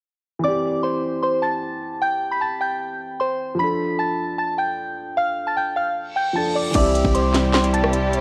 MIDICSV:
0, 0, Header, 1, 9, 480
1, 0, Start_track
1, 0, Key_signature, 0, "major"
1, 0, Tempo, 394737
1, 529, Time_signature, 4, 2, 24, 8
1, 9981, End_track
2, 0, Start_track
2, 0, Title_t, "Synth bell"
2, 0, Program_c, 0, 98
2, 532, Note_on_c, 0, 86, 102
2, 541, Note_on_c, 0, 74, 80
2, 981, Note_off_c, 0, 86, 0
2, 986, Note_off_c, 0, 74, 0
2, 1010, Note_on_c, 0, 84, 78
2, 1020, Note_on_c, 0, 72, 61
2, 1461, Note_off_c, 0, 84, 0
2, 1466, Note_off_c, 0, 72, 0
2, 1490, Note_on_c, 0, 84, 77
2, 1499, Note_on_c, 0, 72, 63
2, 1690, Note_off_c, 0, 84, 0
2, 1695, Note_off_c, 0, 72, 0
2, 1727, Note_on_c, 0, 81, 75
2, 1737, Note_on_c, 0, 93, 66
2, 2405, Note_off_c, 0, 81, 0
2, 2410, Note_off_c, 0, 93, 0
2, 2450, Note_on_c, 0, 79, 106
2, 2461, Note_on_c, 0, 91, 85
2, 2788, Note_off_c, 0, 79, 0
2, 2793, Note_off_c, 0, 91, 0
2, 2813, Note_on_c, 0, 83, 75
2, 2822, Note_on_c, 0, 95, 63
2, 2912, Note_off_c, 0, 83, 0
2, 2917, Note_off_c, 0, 95, 0
2, 2930, Note_on_c, 0, 81, 74
2, 2941, Note_on_c, 0, 93, 60
2, 3130, Note_off_c, 0, 81, 0
2, 3136, Note_off_c, 0, 93, 0
2, 3169, Note_on_c, 0, 79, 77
2, 3179, Note_on_c, 0, 91, 65
2, 3846, Note_off_c, 0, 79, 0
2, 3851, Note_off_c, 0, 91, 0
2, 3891, Note_on_c, 0, 84, 88
2, 3900, Note_on_c, 0, 72, 72
2, 4090, Note_off_c, 0, 84, 0
2, 4096, Note_off_c, 0, 72, 0
2, 4368, Note_on_c, 0, 83, 101
2, 4377, Note_on_c, 0, 95, 83
2, 4819, Note_off_c, 0, 83, 0
2, 4824, Note_off_c, 0, 95, 0
2, 4850, Note_on_c, 0, 81, 90
2, 4858, Note_on_c, 0, 93, 64
2, 5300, Note_off_c, 0, 81, 0
2, 5305, Note_off_c, 0, 93, 0
2, 5329, Note_on_c, 0, 81, 74
2, 5338, Note_on_c, 0, 93, 65
2, 5530, Note_off_c, 0, 81, 0
2, 5535, Note_off_c, 0, 93, 0
2, 5571, Note_on_c, 0, 79, 84
2, 5580, Note_on_c, 0, 91, 62
2, 6247, Note_off_c, 0, 79, 0
2, 6252, Note_off_c, 0, 91, 0
2, 6289, Note_on_c, 0, 77, 104
2, 6299, Note_on_c, 0, 89, 78
2, 6627, Note_off_c, 0, 77, 0
2, 6632, Note_off_c, 0, 89, 0
2, 6651, Note_on_c, 0, 81, 72
2, 6660, Note_on_c, 0, 93, 57
2, 6750, Note_off_c, 0, 81, 0
2, 6756, Note_off_c, 0, 93, 0
2, 6770, Note_on_c, 0, 79, 73
2, 6779, Note_on_c, 0, 91, 58
2, 6970, Note_off_c, 0, 79, 0
2, 6975, Note_off_c, 0, 91, 0
2, 7007, Note_on_c, 0, 77, 71
2, 7016, Note_on_c, 0, 89, 58
2, 7208, Note_off_c, 0, 77, 0
2, 7214, Note_off_c, 0, 89, 0
2, 7491, Note_on_c, 0, 79, 79
2, 7501, Note_on_c, 0, 91, 64
2, 7691, Note_off_c, 0, 79, 0
2, 7696, Note_off_c, 0, 91, 0
2, 7729, Note_on_c, 0, 81, 84
2, 7738, Note_on_c, 0, 93, 62
2, 7930, Note_off_c, 0, 81, 0
2, 7935, Note_off_c, 0, 93, 0
2, 7969, Note_on_c, 0, 74, 76
2, 7979, Note_on_c, 0, 86, 59
2, 8170, Note_off_c, 0, 74, 0
2, 8175, Note_off_c, 0, 86, 0
2, 8212, Note_on_c, 0, 86, 104
2, 8221, Note_on_c, 0, 74, 84
2, 8661, Note_off_c, 0, 86, 0
2, 8666, Note_off_c, 0, 74, 0
2, 8688, Note_on_c, 0, 84, 84
2, 8698, Note_on_c, 0, 72, 63
2, 9140, Note_off_c, 0, 84, 0
2, 9145, Note_off_c, 0, 72, 0
2, 9168, Note_on_c, 0, 84, 84
2, 9179, Note_on_c, 0, 72, 66
2, 9369, Note_off_c, 0, 84, 0
2, 9375, Note_off_c, 0, 72, 0
2, 9408, Note_on_c, 0, 81, 76
2, 9418, Note_on_c, 0, 93, 68
2, 9981, Note_off_c, 0, 81, 0
2, 9981, Note_off_c, 0, 93, 0
2, 9981, End_track
3, 0, Start_track
3, 0, Title_t, "Soft synth lead"
3, 0, Program_c, 1, 80
3, 8210, Note_on_c, 1, 76, 109
3, 8660, Note_off_c, 1, 76, 0
3, 8690, Note_on_c, 1, 74, 92
3, 9841, Note_off_c, 1, 74, 0
3, 9888, Note_on_c, 1, 72, 81
3, 9981, Note_off_c, 1, 72, 0
3, 9981, End_track
4, 0, Start_track
4, 0, Title_t, "Grand piano"
4, 0, Program_c, 2, 0
4, 478, Note_on_c, 2, 52, 63
4, 531, Note_on_c, 2, 60, 61
4, 583, Note_on_c, 2, 67, 74
4, 752, Control_c, 2, 64, 127
4, 4294, Note_off_c, 2, 52, 0
4, 4315, Note_on_c, 2, 53, 62
4, 4321, Note_off_c, 2, 60, 0
4, 4347, Note_off_c, 2, 67, 0
4, 4368, Note_on_c, 2, 62, 55
4, 4383, Control_c, 2, 64, 0
4, 4420, Note_on_c, 2, 69, 72
4, 4597, Control_c, 2, 64, 127
4, 7653, Note_off_c, 2, 53, 0
4, 7680, Note_off_c, 2, 62, 0
4, 7698, Note_on_c, 2, 53, 50
4, 7706, Note_off_c, 2, 69, 0
4, 7725, Note_on_c, 2, 62, 49
4, 7752, Note_on_c, 2, 69, 58
4, 8157, Note_on_c, 2, 52, 68
4, 8191, Note_on_c, 2, 55, 64
4, 8193, Note_off_c, 2, 53, 0
4, 8207, Note_off_c, 2, 62, 0
4, 8220, Note_off_c, 2, 69, 0
4, 8222, Control_c, 2, 64, 0
4, 8227, Note_on_c, 2, 60, 64
4, 8262, Note_on_c, 2, 67, 79
4, 8415, Control_c, 2, 64, 127
4, 9981, Note_off_c, 2, 52, 0
4, 9981, Note_off_c, 2, 55, 0
4, 9981, Note_off_c, 2, 60, 0
4, 9981, Note_off_c, 2, 67, 0
4, 9981, End_track
5, 0, Start_track
5, 0, Title_t, "String section"
5, 0, Program_c, 3, 48
5, 8208, Note_on_c, 3, 48, 77
5, 8209, Note_on_c, 3, 55, 74
5, 8209, Note_on_c, 3, 64, 74
5, 8210, Note_on_c, 3, 67, 89
5, 9981, Note_off_c, 3, 48, 0
5, 9981, Note_off_c, 3, 55, 0
5, 9981, Note_off_c, 3, 64, 0
5, 9981, Note_off_c, 3, 67, 0
5, 9981, End_track
6, 0, Start_track
6, 0, Title_t, "808-style bass"
6, 0, Program_c, 4, 38
6, 8208, Note_on_c, 4, 36, 113
6, 8554, Note_off_c, 4, 36, 0
6, 8569, Note_on_c, 4, 36, 104
6, 9960, Note_off_c, 4, 36, 0
6, 9981, End_track
7, 0, Start_track
7, 0, Title_t, "Downlifter"
7, 0, Program_c, 5, 103
7, 8209, Note_on_c, 5, 60, 82
7, 9981, Note_off_c, 5, 60, 0
7, 9981, End_track
8, 0, Start_track
8, 0, Title_t, "Reverse cymbal"
8, 0, Program_c, 6, 119
8, 7248, Note_on_c, 6, 60, 81
8, 8208, Note_off_c, 6, 60, 0
8, 9981, End_track
9, 0, Start_track
9, 0, Title_t, "Drums"
9, 8206, Note_on_c, 9, 42, 80
9, 8208, Note_on_c, 9, 36, 119
9, 8208, Note_on_c, 9, 49, 102
9, 8328, Note_off_c, 9, 42, 0
9, 8329, Note_off_c, 9, 49, 0
9, 8330, Note_off_c, 9, 36, 0
9, 8454, Note_on_c, 9, 42, 82
9, 8568, Note_on_c, 9, 36, 100
9, 8575, Note_off_c, 9, 42, 0
9, 8690, Note_off_c, 9, 36, 0
9, 8692, Note_on_c, 9, 42, 79
9, 8814, Note_off_c, 9, 42, 0
9, 8927, Note_on_c, 9, 39, 74
9, 8929, Note_on_c, 9, 38, 92
9, 8932, Note_on_c, 9, 42, 82
9, 9049, Note_off_c, 9, 39, 0
9, 9051, Note_off_c, 9, 38, 0
9, 9054, Note_off_c, 9, 42, 0
9, 9167, Note_on_c, 9, 39, 99
9, 9169, Note_on_c, 9, 38, 121
9, 9170, Note_on_c, 9, 42, 40
9, 9289, Note_off_c, 9, 39, 0
9, 9289, Note_off_c, 9, 42, 0
9, 9289, Note_on_c, 9, 42, 66
9, 9291, Note_off_c, 9, 38, 0
9, 9410, Note_off_c, 9, 42, 0
9, 9410, Note_on_c, 9, 42, 81
9, 9530, Note_on_c, 9, 37, 106
9, 9531, Note_off_c, 9, 42, 0
9, 9644, Note_on_c, 9, 42, 78
9, 9652, Note_off_c, 9, 37, 0
9, 9766, Note_off_c, 9, 42, 0
9, 9889, Note_on_c, 9, 42, 75
9, 9981, Note_off_c, 9, 42, 0
9, 9981, End_track
0, 0, End_of_file